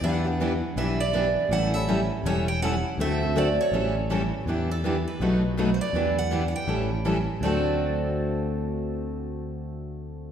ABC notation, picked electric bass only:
X:1
M:4/4
L:1/8
Q:"Swing" 1/4=162
K:Dmix
V:1 name="Picked electric bass" clef=bass
E,,4 B,,,4 | A,,,4 E,,,4 | D,,4 A,,,4 | E,,4 B,,,4 |
E,,4 A,,,4 | D,,8- | D,,8 |]